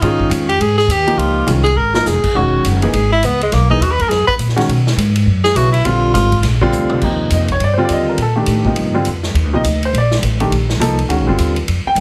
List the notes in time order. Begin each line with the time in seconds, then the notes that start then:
0.01 G#2 D#3 G#3 C#4 D#4 F4, ride
0.20 kick
0.30 F2, hi-hat pedal, ride
0.49 G4, ride
0.58 G#2 G#4, ride
0.78 G#4, snare
0.87 D#2, hi-hat pedal, ride
0.91 G4
1.07 F3 A#3 D#4 G4, ride
1.16 C#2 F4, ride
1.47 C2 D#3 G#3 C#4 F4, hi-hat pedal, ride
1.63 G#4, ride
1.75 G#1 A#4
1.94 F3 A#3 D#4 F4 A#4, snare
2.05 F1 G#4, snare, hi-hat pedal
2.23 muted upright bass stroke, kick, crash
2.34 E1 D#3 G#3 C#4 F#4
2.64 F#1, hi-hat pedal, ride
2.82 E3 A#3 D#4 G#4, ride
2.93 G#1 G#4, ride
3.12 E4
3.23 C#2 B3, hi-hat pedal, ride
3.41 G#3, ride
3.52 B1 A#3, snare, ride
3.70 E3 A#3 D#4 G#4, kick
3.80 D#2 F#4, hi-hat pedal, ride
3.92 B4
3.99 A#4, kick, ride
4.09 F#2 G#4, snare, ride
4.27 B4, kick
4.38 A#2, hi-hat pedal, ride
4.49 snare
4.56 D#3 G#3 C#4 F#4, snare, ride
4.68 B2, ride
4.87 snare
4.96 G#2, hi-hat pedal, ride
5.16 ride
5.26 F#2
5.44 G#4, snare
5.54 B1 C#3 F#3 B3 E4 F#4, hi-hat pedal, ride
5.72 E4, ride
5.84 A#1 D3 G3 C4 F4, ride
6.14 G#1 F4, snare, hi-hat pedal, ride
6.32 kick, ride
6.42 A#1, snare, ride
6.61 D3 G3 C4 F4, kick
6.72 D2, hi-hat pedal, mid tom
6.89 mid tom
7.01 D#2 C3 F3 A#3 D#4, kick, crash
7.30 F2 D#5, hi-hat pedal, ride
7.48 C#5, kick, ride
7.59 G2, ride
7.64 D5
7.74 C5
7.78 D3 G3 C4 F4
7.85 D#2 D5, hi-hat pedal, ride
7.92 D#5
8.09 A#4
8.17 A#2, ride
8.22 A4
8.36 D#3 A3 D4 G4
8.46 A2, hi-hat pedal, ride
8.65 C3 F3 A#3 D#4, kick
8.76 G2, ride
8.94 D3 G3 C4 F4
9.05 F2, hi-hat pedal, ride
9.23 snare
9.34 D#2, ride
9.44 D2
9.53 A#1 C3 F3 A#3 D#4 D#5
9.64 D2, hi-hat pedal, ride
9.83 C5, ride
9.93 A#1, ride
9.98 D5
10.11 snare
10.22 A1, hi-hat pedal, ride
10.40 D#3 A3 D4 G4, ride
10.50 A#1, ride
10.69 snare
10.79 C2 F3 A#3 D#4 A4, hi-hat pedal, ride
10.99 ride
11.08 D2 D#3 G#3 C#4 F#4, ride
11.19 A#1
11.27 G1 D3 G3 C4 F4
11.38 D#2, hi-hat pedal, ride
11.56 ride
11.67 F2, ride
11.85 G5, muted upright bass stroke
11.95 G2, hi-hat pedal, ride